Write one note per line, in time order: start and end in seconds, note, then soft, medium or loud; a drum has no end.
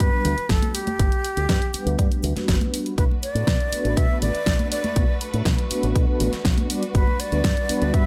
0.00 0.09 G2 medium
0.00 0.10 F#4 medium
0.00 0.10 B4 loud
0.00 0.51 B4 loud
0.00 kick loud
0.00 closed hi-hat medium
0.00 cabasa soft
0.12 0.34 G3 medium
0.12 0.35 B3 medium
0.12 0.35 D4 medium
0.12 0.35 F#4 medium
0.25 0.34 D2 medium
0.25 open hi-hat medium
0.25 low conga medium
0.25 cabasa medium
0.38 closed hi-hat soft
0.38 cabasa soft
0.49 0.59 G1 medium
0.49 0.76 A4 loud
0.49 kick loud
0.49 snare loud
0.49 closed hi-hat medium
0.49 cabasa medium
0.62 0.73 G3 medium
0.62 0.73 B3 medium
0.62 0.73 D4 medium
0.62 0.73 F#4 medium
0.62 0.73 B4 medium
0.62 closed hi-hat soft
0.62 high conga medium
0.62 cabasa soft
0.74 0.87 G3 medium
0.74 0.87 B3 medium
0.74 0.87 D4 medium
0.74 0.88 F#4 medium
0.74 2.23 G4 loud
0.74 0.88 D5 medium
0.74 open hi-hat loud
0.74 cabasa loud
0.87 closed hi-hat medium
0.87 high conga medium
0.87 cabasa soft
0.99 1.08 G1 loud
0.99 1.07 G3 loud
0.99 1.07 B3 medium
0.99 1.07 D4 medium
0.99 1.08 F#4 medium
0.99 1.08 B4 loud
0.99 kick loud
0.99 closed hi-hat medium
0.99 cabasa medium
1.12 closed hi-hat soft
1.12 cabasa soft
1.24 open hi-hat loud
1.24 cabasa medium
1.36 1.45 D2 medium
1.36 1.44 G3 medium
1.36 1.44 B3 medium
1.36 1.45 D4 medium
1.36 closed hi-hat medium
1.36 cabasa soft
1.49 1.58 G2 medium
1.49 kick loud
1.49 snare loud
1.49 closed hi-hat medium
1.49 low conga medium
1.49 cabasa medium
1.62 closed hi-hat soft
1.73 2.08 G3 loud
1.73 2.08 B3 medium
1.73 2.08 D4 medium
1.73 2.09 B4 loud
1.73 2.08 F#5 medium
1.73 muted fingered electric bass stroke soft
1.73 open hi-hat loud
1.73 cabasa loud
1.86 1.95 D2 medium
1.86 closed hi-hat medium
1.86 cabasa soft
1.98 2.07 G2 medium
1.98 kick loud
1.98 closed hi-hat medium
1.98 high conga medium
1.98 cabasa soft
2.11 2.33 G3 medium
2.11 2.33 B3 medium
2.11 2.33 D4 medium
2.11 2.33 F#4 medium
2.11 2.33 B4 loud
2.11 muted fingered electric bass stroke soft
2.11 closed hi-hat soft
2.11 cabasa soft
2.23 2.32 D2 medium
2.23 open hi-hat loud
2.23 low conga medium
2.23 cabasa medium
2.36 2.58 G3 loud
2.36 2.58 B3 medium
2.36 2.58 D4 medium
2.36 2.58 F#4 medium
2.36 2.58 B4 loud
2.36 snare soft
2.36 closed hi-hat medium
2.36 high conga medium
2.36 cabasa soft
2.48 2.57 G1 medium
2.48 kick loud
2.48 snare loud
2.48 closed hi-hat medium
2.48 cabasa medium
2.61 2.95 G3 medium
2.61 2.95 B3 medium
2.61 2.95 D4 medium
2.61 2.95 F#4 medium
2.61 2.95 B4 medium
2.61 closed hi-hat soft
2.61 high conga medium
2.61 cabasa soft
2.74 open hi-hat loud
2.74 cabasa loud
2.86 closed hi-hat medium
2.86 cabasa soft
2.98 3.07 B1 medium
2.98 6.66 A3 medium
2.98 3.06 A3 loud
2.98 3.06 B3 medium
2.98 8.06 D4 medium
2.98 3.06 D4 medium
2.98 8.06 F#4 medium
2.98 3.06 F#4 medium
2.98 6.66 B4 medium
2.98 3.04 B4 medium
2.98 3.06 B4 loud
2.98 kick loud
2.98 closed hi-hat medium
2.98 cabasa medium
3.11 high conga medium
3.23 3.98 D5 loud
3.23 open hi-hat loud
3.23 cabasa medium
3.35 3.44 A2 medium
3.35 3.43 A3 medium
3.35 3.43 B3 medium
3.35 3.43 D4 medium
3.35 3.43 F#4 medium
3.35 3.43 B4 medium
3.35 closed hi-hat medium
3.35 cabasa soft
3.47 3.56 B2 medium
3.47 kick loud
3.47 snare loud
3.47 closed hi-hat medium
3.47 low conga medium
3.47 cabasa soft
3.60 closed hi-hat soft
3.72 4.06 A3 loud
3.72 4.06 B3 medium
3.72 4.07 D4 medium
3.72 4.07 F#4 medium
3.72 4.07 B4 loud
3.72 muted fingered electric bass stroke soft
3.72 open hi-hat loud
3.72 cabasa loud
3.85 3.93 A1 medium
3.85 closed hi-hat medium
3.85 cabasa soft
3.97 4.06 B2 medium
3.97 4.21 E5 loud
3.97 kick loud
3.97 closed hi-hat medium
3.97 cabasa soft
4.09 4.31 A3 medium
4.09 4.31 B3 medium
4.09 4.31 D4 medium
4.09 4.31 F#4 medium
4.09 4.31 B4 loud
4.21 4.30 A1 medium
4.21 4.68 D5 loud
4.21 open hi-hat loud
4.21 low conga medium
4.21 cabasa medium
4.34 closed hi-hat medium
4.34 cabasa soft
4.46 4.55 B1 medium
4.46 kick loud
4.46 snare loud
4.46 closed hi-hat medium
4.46 cabasa medium
4.59 4.69 A3 medium
4.59 4.69 B3 medium
4.59 4.70 D4 medium
4.59 4.70 F#4 medium
4.59 4.70 B4 medium
4.59 closed hi-hat soft
4.59 high conga medium
4.59 cabasa soft
4.71 4.84 A3 medium
4.71 4.84 B3 medium
4.71 4.84 D4 medium
4.71 4.84 F#4 medium
4.71 4.84 C#5 medium
4.71 5.18 D5 loud
4.71 open hi-hat loud
4.71 cabasa loud
4.84 closed hi-hat medium
4.84 high conga loud
4.84 cabasa soft
4.96 5.05 B1 medium
4.96 5.04 A3 loud
4.96 5.04 B3 medium
4.96 5.04 D4 medium
4.96 5.04 F#4 medium
4.96 5.05 B4 loud
4.96 kick loud
4.96 closed hi-hat medium
4.96 cabasa medium
5.21 open hi-hat loud
5.21 cabasa medium
5.33 5.42 A2 medium
5.33 5.41 A3 medium
5.33 5.41 B3 medium
5.33 5.41 D4 medium
5.33 5.42 F#4 medium
5.33 5.42 B4 medium
5.33 closed hi-hat medium
5.33 cabasa soft
5.45 5.54 B2 medium
5.45 kick loud
5.45 snare loud
5.45 closed hi-hat medium
5.45 low conga medium
5.45 cabasa medium
5.58 closed hi-hat soft
5.70 6.05 A3 loud
5.70 6.05 B3 medium
5.70 6.05 D4 medium
5.70 6.05 F#4 medium
5.70 6.05 B4 loud
5.70 muted fingered electric bass stroke soft
5.70 open hi-hat loud
5.70 cabasa medium
5.82 5.92 A1 medium
5.82 closed hi-hat medium
5.82 cabasa soft
5.95 6.04 B2 medium
5.95 kick loud
5.95 closed hi-hat medium
5.95 cabasa soft
6.08 6.30 A3 medium
6.08 6.30 B3 medium
6.08 6.30 D4 medium
6.08 6.30 F#4 medium
6.08 6.30 B4 loud
6.08 muted fingered electric bass stroke soft
6.20 6.29 A1 medium
6.20 open hi-hat loud
6.20 low conga medium
6.20 cabasa medium
6.32 snare soft
6.32 closed hi-hat medium
6.32 cabasa soft
6.45 6.54 B1 medium
6.45 kick loud
6.45 snare loud
6.45 closed hi-hat medium
6.45 cabasa soft
6.58 6.68 A3 medium
6.58 6.68 B3 medium
6.58 6.68 D4 medium
6.58 6.68 F#4 medium
6.58 6.68 B4 medium
6.58 closed hi-hat soft
6.58 high conga medium
6.58 cabasa soft
6.70 6.83 G3 medium
6.70 8.06 G3 medium
6.70 6.83 B3 medium
6.70 6.83 D4 medium
6.70 6.83 F#4 medium
6.70 8.06 B4 medium
6.70 6.83 D5 medium
6.70 open hi-hat loud
6.70 cabasa medium
6.83 closed hi-hat medium
6.83 cabasa soft
6.94 7.03 G1 loud
6.94 7.03 G3 loud
6.94 7.03 B3 medium
6.94 7.03 D4 medium
6.94 7.03 F#4 medium
6.94 7.22 B4 medium
6.94 7.03 B4 loud
6.94 kick loud
6.94 closed hi-hat medium
6.94 cabasa soft
7.07 high conga medium
7.20 7.95 D5 loud
7.20 open hi-hat loud
7.20 cabasa medium
7.32 7.40 D2 medium
7.32 7.40 G3 medium
7.32 7.40 B3 medium
7.32 7.40 D4 medium
7.32 7.40 F#4 medium
7.32 7.40 B4 medium
7.32 closed hi-hat soft
7.32 cabasa soft
7.44 7.53 G2 medium
7.44 kick loud
7.44 snare loud
7.44 closed hi-hat medium
7.44 low conga medium
7.44 cabasa soft
7.57 closed hi-hat soft
7.69 8.03 G3 loud
7.69 8.03 B3 medium
7.69 8.03 D4 medium
7.69 8.04 F#4 medium
7.69 8.04 B4 loud
7.69 muted fingered electric bass stroke soft
7.69 open hi-hat loud
7.69 cabasa medium
7.82 7.90 D2 medium
7.82 closed hi-hat soft
7.82 cabasa soft
7.94 8.02 G2 medium
7.94 8.06 E5 loud
7.94 kick loud
7.94 closed hi-hat medium
7.94 cabasa soft